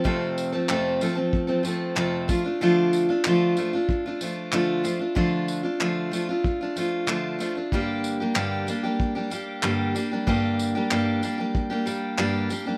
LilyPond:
<<
  \new Staff \with { instrumentName = "Steel-string acoustic guitar" } { \time 4/4 \key d \phrygian \tempo 4 = 94 <f, c f a c' a'>8. <f a c' a'>16 <f, c f a c' a'>8 <f a c' a'>16 <f a c' a'>8 <f a c' a'>16 <f a c' a'>8 <f, c f a c' a'>8 <f a d' f'>16 <a d' f'>16 | <d f a d' f'>8. <a d' f'>16 <d f a d' f'>8 <f a d' f'>16 <a d' f'>8 <a d' f'>16 <f a d' f'>8 <d f a d' f'>8 <f a d' f'>16 <a d' f'>16 | <d f a d' f'>8. <a d' f'>16 <d f a d' f'>8 <f a d' f'>16 <a d' f'>8 <a d' f'>16 <f a d' f'>8 <d f a d' f'>8 <f a d' f'>16 <a d' f'>16 | <g, d g bes d' g'>8. <g bes d' g'>16 <g, d g bes d' g'>8 <g bes d' g'>16 <g bes d' g'>8 <g bes d' g'>16 <g bes d' g'>8 <g, d g bes d' g'>8 <g bes d' g'>16 <g bes d' g'>16 |
<g, d g bes d' g'>8. <g bes d' g'>16 <g, d g bes d' g'>8 <g bes d' g'>16 <g bes d' g'>8 <g bes d' g'>16 <g bes d' g'>8 <g, d g bes d' g'>8 <g bes d' g'>16 <g bes d' g'>16 | }
  \new DrumStaff \with { instrumentName = "Drums" } \drummode { \time 4/4 bd8 tamb8 hc8 tamb8 bd8 tamb8 hc8 <bd tamb>8 | r8 tamb8 hc8 tamb8 bd8 tamb8 hc8 tamb8 | bd8 tamb8 hc8 tamb8 bd8 tamb8 hc8 tamb8 | bd8 tamb8 hc8 tamb8 bd8 tamb8 hc8 tamb8 |
bd8 tamb8 hc8 tamb8 bd8 tamb8 hc8 tamb8 | }
>>